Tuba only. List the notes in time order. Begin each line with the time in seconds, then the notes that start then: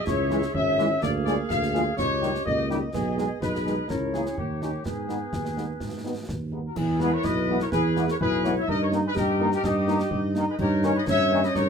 0.07 C#2
0.55 G#1
1.02 D2
1.50 D2
1.98 C#2
2.46 C#2
2.93 B1
3.41 B1
3.89 C#2
4.37 D#2
4.85 G#2
5.33 D#2
5.81 G#2
6.29 D#2
6.76 E2
7.24 B1
7.72 E2
8.20 B1
8.68 G2
9.16 G2
9.63 G2
10.11 G2
10.59 G2
11.07 G2
11.55 G2